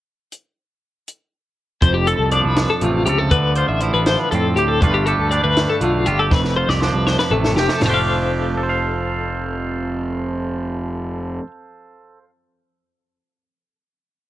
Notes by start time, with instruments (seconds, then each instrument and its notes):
0.32 closed hi-hat
1.08 closed hi-hat
1.82 picked electric bass F1, clean electric guitar F2 C5, kick, closed hi-hat
1.94 clean electric guitar G4
2.07 clean electric guitar A4, closed hi-hat
2.19 picked electric bass C2
2.31 clean electric guitar F3 D4 D5, closed hi-hat
2.44 picked electric bass C2, clean electric guitar B4
2.56 snare, closed hi-hat
2.70 clean electric guitar A4
2.81 picked electric bass A1, clean electric guitar C3 A3 F4, closed hi-hat
3.06 picked electric bass C#2, clean electric guitar G4 A4, closed hi-hat
3.18 clean electric guitar A4
3.31 picked electric bass D2, clean electric guitar D3 B4, kick, closed hi-hat
3.55 clean electric guitar F4 C5, closed hi-hat
3.69 picked electric bass A1, clean electric guitar E5
3.80 clean electric guitar F3 E4 C5, closed hi-hat
3.94 picked electric bass A1, clean electric guitar B4
4.06 clean electric guitar C5, snare, closed hi-hat
4.19 clean electric guitar B4
4.31 picked electric bass F2, clean electric guitar A2 C4 A4, closed hi-hat
4.56 picked electric bass D2, clean electric guitar G4, closed hi-hat
4.68 clean electric guitar A4
4.81 picked electric bass G1, clean electric guitar G2 G3 A3 D4 F4 B4, kick, closed hi-hat
4.94 clean electric guitar G4
5.06 clean electric guitar G4 A4, closed hi-hat
5.19 picked electric bass D2
5.31 clean electric guitar G3 D4 D5, closed hi-hat
5.44 picked electric bass D2, clean electric guitar B4
5.57 snare, closed hi-hat
5.70 clean electric guitar A4
5.81 picked electric bass B1, clean electric guitar D3 A3 F4, closed hi-hat
6.06 picked electric bass G1, clean electric guitar F4 G4, closed hi-hat
6.19 clean electric guitar G4 A4
6.31 picked electric bass F1, clean electric guitar F2 B4, kick, snare
6.44 snare
6.56 clean electric guitar F4 C5
6.68 picked electric bass C2, clean electric guitar G4 D5, snare
6.81 clean electric guitar F3 D4 C5, snare
6.94 picked electric bass C2, clean electric guitar B4
7.07 clean electric guitar C5, snare
7.19 clean electric guitar B4, snare
7.31 picked electric bass A1, clean electric guitar C3 A3 A4
7.44 snare
7.56 picked electric bass F1, clean electric guitar G4, snare
7.69 clean electric guitar A4, snare
7.81 picked electric bass F1, clean electric guitar F2 F3 F4, snare, floor tom, open hi-hat
7.86 clean electric guitar A3 D4 A4 C5
7.90 clean electric guitar G4 F5
8.57 clean electric guitar A4
8.63 clean electric guitar C5
8.69 clean electric guitar F5